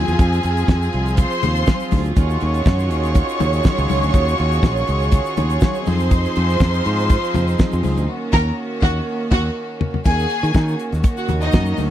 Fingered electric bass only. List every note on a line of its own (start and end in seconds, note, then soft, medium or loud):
0.08 0.17 E2 medium
0.19 0.39 F2 loud
0.44 0.63 F2 medium
0.69 0.88 F2 medium
0.94 1.23 C2 loud
1.43 1.62 D#2 loud
1.93 2.11 D2 medium
2.17 2.36 D#2 loud
2.42 2.61 D#2 medium
2.66 2.92 F#2 medium
2.92 3.21 D#2 loud
3.40 3.59 D#2 medium
3.78 3.87 C#2 loud
3.90 4.00 C#2 medium
4.03 4.12 D2 loud
4.14 4.33 D#2 loud
4.40 4.58 D#2 medium
4.63 4.82 A#1 medium
4.89 5.18 C#2 loud
5.38 5.57 D#2 medium
5.87 6.25 F2 loud
6.37 6.55 F2 loud
6.61 6.80 F2 medium
6.86 7.15 G#2 loud
7.35 7.54 F2 loud
7.73 7.82 F2 loud
7.85 7.94 C#2 loud
7.98 8.06 D2 loud
8.33 8.50 D#2 loud
8.83 8.99 D#2 loud
9.32 9.49 D#2 loud
10.06 10.25 D#2 loud
10.43 10.52 D#3 loud
10.55 10.74 D#3 loud
10.93 11.02 D#2 medium
11.29 11.48 D#2 loud
11.54 11.73 F#2 medium
11.79 11.90 D2 medium